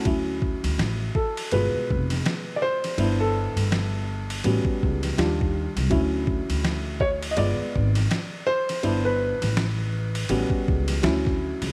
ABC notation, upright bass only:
X:1
M:4/4
L:1/16
Q:"Swing 16ths" 1/4=82
K:D
V:1 name="Upright bass" clef=bass
D,,3 D,, A,,,2 z2 G,,, z =F,,,2 z4 | G,,,3 G,,,4- G,,, A,,, z C,,2 _E,,3 =C,, | D,,3 D,,4- D,, G,,, z _A,,,2 z4 | G,,,3 A,,,4- A,,, A,,, z C,,2 D,,3 C,, |]